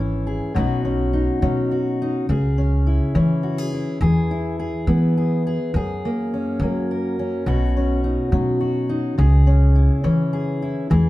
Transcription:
Already playing: G#1 E3 C#4
0.00 E4
0.27 G#4
0.54 B1 B2 F#3 C#4 D#4 F#4
0.85 C#4
1.13 D#4
1.42 B2 F#3 C#4
1.71 F#4
2.02 D#4
2.29 C#2 C#3 G#4
2.58 C#4
2.87 E4
3.15 C#3 E3 C#4
3.43 F#4
3.58 G#4
3.73 E4
4.01 E2 E3 G#4
4.31 E4
4.59 G#4
4.87 E3 B3 E4
5.17 G#4
5.47 G#4
5.74 F#2 G#4
6.05 A#3
6.34 C#4
6.60 F#3 A#3
6.91 A#4
7.19 C#4
7.46 B1 B2 F#4
7.77 C#4
8.04 D#4
8.32 B2 F#3 C#4
8.61 F#4
8.89 D#4
9.18 C#2 C#3 G#4
9.47 C#4
9.75 E4
10.04 C#3 E3 C#4
10.33 G#4
10.62 E4
10.90 E2 E3 G#4

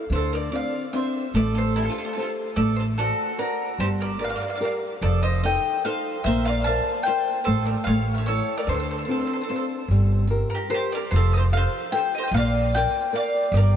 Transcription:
0.10 D2 D3 C5
0.15 A4
0.33 A#4 D5
0.52 C4 D4 F4 D5 F5
0.93 C4 D4 F4 C5 E5
1.34 A1 A3 A4 D5
1.55 A4 C5
1.76 E4 G4 A4 C5
1.82 F4 A4
1.90 F4 A4
1.98 F4 A4
2.05 F4 A4
2.13 F4 A4
2.17 G4 A4 C5
2.22 F4
2.56 A1 A3 A4 D5
2.76 A4 C5
2.98 F#4 A4 C5 D5
3.38 F#4 A#4 C5 D5
3.79 G1 G3 G4 C5
4.00 A#4 D5
4.19 F4 G4 A#4 D5
4.24 F5
4.29 D5 F5
4.36 D5 F5
4.41 D5 F5
4.48 D5 F5
4.55 D5 F5
4.60 F4 G4 A#4 D5
4.65 F5
5.01 F1 F3 A4 D5
5.22 C5 D#5
5.43 D#4 F4 A4 D#5 G5
5.85 D#4 F4 A4 C5 F5
6.24 A#1 A#3 C5 E5
6.45 D5 F5
6.64 F4 A#4 C5 F5 A5
7.03 F4 C5 G5
7.08 A#4 C5
7.44 A1 A3 A4 C5
7.65 A#4 D5
7.84 A1 C#5 F5
7.89 A3
8.14 C#5 E5
8.26 E4 A4 C#5
8.57 A#4 D5
8.67 D2 D3 A4 C5
8.74 A4 C5
8.80 A4 C5
8.91 A4 C5
8.98 A4 C5
9.05 C4 D4 A4 C5
9.09 F4 A4 C5
9.19 A4 C5
9.26 A4 C5
9.33 A4 C5
9.41 A4 C5
9.49 C4 D4 F4 A4 C5
9.56 A4 C5
9.88 G1 G3
10.30 F4 G4 A#4
10.50 A#4
10.55 G4
10.70 F4 G4 A#4 C5
10.74 G4
10.92 A#4 D5
11.11 F1 F3 C5
11.16 A4
11.33 D#5
11.37 C5
11.52 F4 G4 A4 F5
11.57 C5
11.92 F4 G4 A4 G5
11.97 C5
12.15 C5 D#5
12.23 G5
12.27 A#1 D#5
12.34 A#3 D5 F5
12.75 F4 A#4 D5 G5
13.13 F4 A#4 D5 F5
13.52 G1 G3 D5
13.57 A#4

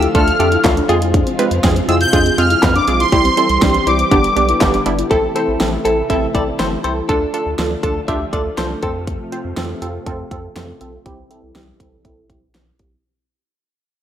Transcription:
Already playing: D3 F3 A3 F4
0.03 closed hi-hat
0.15 D2 A3 D4 F4 A4 F6, kick, closed hi-hat
0.28 closed hi-hat
0.40 F2 A3 D4 F4 G4 A4, closed hi-hat
0.52 E4, closed hi-hat
0.64 D2 A3 D4 F4 A4, kick, snare, clap, closed hi-hat
0.77 D4, closed hi-hat
0.89 F2 C3 G#3 C4 F4 G#4, closed hi-hat
1.02 E4, closed hi-hat
1.14 D4, kick, closed hi-hat
1.26 C4, closed hi-hat
1.39 G#3 C4 F4 B4, closed hi-hat
1.51 F2, closed hi-hat
1.64 F2 G#3 C4 D4 F4 G#4, kick, snare, closed hi-hat
1.76 closed hi-hat
1.88 F2 G#3 C4 E4 F4 G#4 E6, closed hi-hat
2.01 G6, closed hi-hat
2.13 F2 G#3 C4 D4 F4 G#4, kick, closed hi-hat
2.26 closed hi-hat
2.38 F2 G#3 C4 F4 G#4 F6, closed hi-hat
2.50 E4, closed hi-hat
2.63 F2 G#3 C4 F4 B4, kick, snare, clap, closed hi-hat
2.75 D4 D6, closed hi-hat
2.88 B1 G#3 C4 F4 G#4, closed hi-hat
3.00 E4 C6, closed hi-hat
3.12 C2 E3 G3 C4 E4 G4, kick, closed hi-hat
3.25 C4, closed hi-hat
3.37 G3 C4 E4 A4, closed hi-hat
3.49 C2, closed hi-hat
3.62 C2 G3 C4 D4 E4 G4, kick, snare, closed hi-hat
3.75 closed hi-hat
3.87 C2 G3 C4 E4 G4 D6, closed hi-hat
3.99 closed hi-hat
4.11 G1 D3 G3 B3 D4 G4, kick, closed hi-hat
4.24 closed hi-hat
4.36 B1 G3 B3 D4 G4, closed hi-hat
4.49 E4, closed hi-hat
4.61 G1 G3 B3 D4 G4, kick, snare, clap, closed hi-hat
4.74 D4, closed hi-hat
4.86 G1 G3 B3 D4 E4, closed hi-hat
4.98 E4, closed hi-hat
5.11 A1 C3 E3 A3 C4 E4 A4, kick, closed hi-hat
5.35 C4 E4 A4 C5, closed hi-hat
5.48 A1
5.60 A1 C4 E4 A4, snare, closed hi-hat
5.85 A1 C4 E4 A4, closed hi-hat
6.10 A1 C4 E4 A4 E5, kick, closed hi-hat
6.35 A1 C4 E4 A4 D5, kick, closed hi-hat
6.59 G1 C4 E4 A4 C5, snare, closed hi-hat
6.84 C2 C4 E4 A4 C5, closed hi-hat
7.09 D2 D3 F3 A3 D4 F4 A4, kick, closed hi-hat
7.34 D4 F4 A4, closed hi-hat
7.46 D2
7.59 D2 D4 F4 A4, snare, closed hi-hat
7.83 D2 D4 F4 A4, kick, closed hi-hat
8.08 D2 D4 F4 G4 E5, kick, closed hi-hat
8.33 D2 D4 F4 A4 D5, kick, closed hi-hat
8.58 C2 D4 F4 A4 C5, snare, closed hi-hat
8.83 F2 C3 C4 F4 A4, kick, closed hi-hat
9.07 kick, closed hi-hat
9.32 C4 F4 C5, closed hi-hat
9.45 F2
9.57 F2 C4 F4 A4, snare, closed hi-hat
9.82 F2 C4 F4 A4, closed hi-hat
10.06 F2 C4 F4 A4, kick, closed hi-hat
10.31 F2 C4 F4 A4, kick, closed hi-hat
10.56 F2 C4 F4 A4, snare, closed hi-hat
10.81 B1 C4 F4 A4, closed hi-hat
11.06 C2 E3 G3 C4 E4 G4, kick, closed hi-hat
11.31 C4 E4 A4, closed hi-hat
11.43 C2
11.55 C2 C4 E4 G4, snare, closed hi-hat
11.80 C2 C4 E4 A4, kick, closed hi-hat
12.05 C2 C4 E4 A4, kick, closed hi-hat
12.30 C2 C4 E4 G4, kick, closed hi-hat
12.54 B1 C4 E4 G4, snare, closed hi-hat
12.79 B1 C4 E4 G4, kick, closed hi-hat

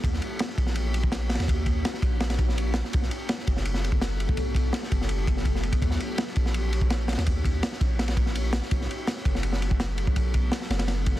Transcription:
0.04 D#2 A#3 C#4 D#4 F#4 C#5, kick, ride
0.13 snare
0.22 ride
0.39 snare, ride
0.49 snare
0.58 A#1, kick, ride
0.67 snare
0.75 ride
0.94 ride
1.03 kick
1.12 snare, ride
1.29 snare, ride
1.35 snare, ride
1.39 D#2, snare, ride
1.48 A#3 C#4 D#4 F#4 C#5, kick, ride
1.66 kick, ride
1.85 snare, ride
1.94 snare
2.02 A#1, kick, ride
2.20 snare, ride
2.30 snare, ride
2.39 kick, ride
2.49 snare
2.58 ride
2.74 snare, ride
2.84 snare
2.93 B1 F#3 A3 B3 D4 A4, kick, ride
3.02 snare
3.11 ride
3.29 snare, ride
3.38 snare
3.47 F#1, kick, ride
3.57 snare
3.65 ride
3.74 snare
3.84 ride
3.92 kick
4.01 snare, ride
4.20 ride
4.29 B1, kick
4.37 F#3 A3 B3 D4 A4, kick, ride
4.55 kick, ride
4.73 snare, ride
4.83 snare
4.92 F#1, kick, ride
5.01 snare
5.09 ride
5.27 kick, ride
5.37 snare
5.45 kick, ride
5.55 snare
5.63 ride
5.73 kick, ride
5.82 D#2 A#3 C#4 D#4 F#4 C#5, kick, ride
5.91 snare
6.00 ride
6.18 snare, ride
6.27 snare
6.36 A#1, kick, ride
6.46 snare
6.54 ride
6.73 ride
6.81 kick
6.90 snare, ride
7.08 snare, ride
7.13 snare, ride
7.18 D#2, snare, ride
7.26 A#3 C#4 D#4 F#4 C#5, kick, ride
7.45 kick, ride
7.63 snare, ride
7.72 snare
7.81 A#1, kick, ride
7.99 snare, ride
8.08 snare, ride
8.17 kick, ride
8.26 snare
8.35 ride
8.53 snare, ride
8.62 snare
8.71 B1 F#3 A3 B3 D4 A4, kick, ride
8.81 snare
8.91 ride
9.07 snare, ride
9.16 snare
9.25 F#1, kick, ride
9.35 snare
9.43 ride
9.53 snare
9.62 ride
9.71 kick
9.80 snare, ride
9.98 ride
10.07 B1, kick
10.16 F#3 A3 B3 D4 A4, kick, ride
10.34 kick, ride
10.52 snare, ride
10.62 snare
10.70 F#1, snare, ride
10.79 snare, ride
10.88 snare, ride
11.06 kick, ride
11.16 snare

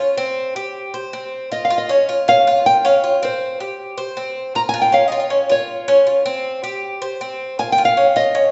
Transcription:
Already playing: C5
0.00 F4
0.17 C4
0.56 G4
0.94 C5
1.13 C4
1.51 F4 D#5
1.65 F5
1.70 F4
1.78 D#5
1.89 C#4 C#5
2.09 F4
2.28 C#4 F5
2.47 F4
2.66 G5
2.85 C#4 F5
3.04 F4
3.23 C4 C5
3.60 G4
3.98 C5
4.17 C4
4.55 F4 A#5
4.69 G#5
4.74 F4
4.82 G5
4.92 C#4 F5
5.08 D#5
5.12 F4
5.20 C#5
5.30 C#4
5.50 F4 C#5
5.88 C#4
6.07 F4
6.26 C4
6.64 G4
7.02 C5
7.21 C4
7.59 F4 G#5
7.72 G5
7.78 F4
7.85 F5
7.97 C#4
8.16 F4 D#5
8.35 C#4

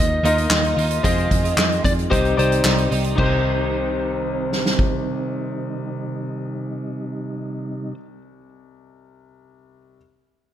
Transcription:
Already playing: D#2 D#3 A#3 D#4 F4 A#4 D#5
0.00 D#5
0.23 D#2 D#3 A#3 D#4 F4 A#4 D#5, closed hi-hat
0.38 closed hi-hat
0.50 D#2 D#3 A#3 D#4 F4, snare, clap
0.64 closed hi-hat
0.77 D#2 D#3 A#3 D#4 F4, open hi-hat
0.91 closed hi-hat
1.03 F2 C3 D#3 F3 G#3 C4 D#4 F4 G#4 C5 D#5, kick, closed hi-hat
1.18 closed hi-hat
1.31 F2, kick, closed hi-hat
1.43 D#3 G#3 C4 F4, closed hi-hat
1.57 F2, snare, clap
1.72 closed hi-hat
1.84 F2 D5, kick, closed hi-hat
1.99 closed hi-hat
2.10 C2 C3 D#3 G3 C4 D#4 G4 C5 D#5, kick, closed hi-hat
2.25 closed hi-hat
2.37 C2 D#3 C4 D#4 G4 C5 D5, closed hi-hat
2.52 closed hi-hat
2.64 C2 D#3 C4 D#4 G4, snare, clap
2.78 closed hi-hat
2.91 C2 D#3 C4 D#4 G4, open hi-hat
3.04 closed hi-hat
3.15 C2 C3 D#3 G3 D#4 G4, kick, crash
3.19 C4 C5
3.23 D#4 G4
4.52 snare
4.66 snare
4.79 kick

